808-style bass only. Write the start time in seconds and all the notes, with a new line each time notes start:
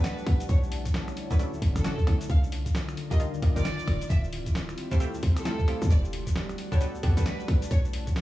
0.27 B1
0.49 B1
1.62 F#1
1.76 F#1
2.07 B1
2.30 C2
3.42 G1
3.56 G1
3.88 D1
4.10 D1
5.23 D2
5.82 D2
5.91 E1
7.03 E2
7.17 B1
7.48 B1
7.71 B1